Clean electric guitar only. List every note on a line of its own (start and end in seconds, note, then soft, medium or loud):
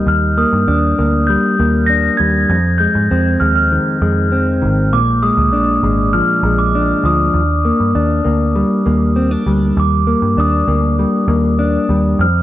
0.00 1.29 G3 medium
0.00 0.37 A#3 medium
0.00 0.67 D#4 medium
0.37 0.97 A#3 medium
0.68 1.88 D4 medium
0.98 1.58 A#3 medium
1.29 2.18 G3 medium
1.59 2.56 A#3 medium
1.89 2.56 D4 medium
2.19 2.56 G3 medium
2.50 4.92 F2 medium
2.80 3.41 G#3 medium
3.11 4.31 C4 medium
3.42 4.01 G#3 medium
3.72 4.60 D#3 medium
4.02 5.22 G#3 medium
4.32 4.98 C4 medium
4.62 4.98 D#3 medium
4.93 7.35 A#2 medium
5.23 5.82 G#3 medium
5.53 6.75 D4 medium
5.83 6.43 G#3 soft
6.14 7.04 F3 medium
6.45 7.41 G#3 medium
6.75 7.95 D4 medium
7.05 7.41 F3 medium
7.65 8.24 A#3 medium
7.95 9.16 D4 medium
8.24 8.85 A#3 medium
8.56 9.46 G3 medium
8.86 10.06 A#3 medium
9.16 9.31 C4 medium
9.31 9.83 D4 medium
9.47 10.99 G3 medium
10.07 10.67 A#3 medium
10.38 11.58 D4 medium
10.68 11.27 A#3 medium
10.99 11.89 G3 medium
11.29 12.25 A#3 medium
11.59 12.25 D4 medium
11.90 12.26 G3 medium
12.20 12.43 F2 medium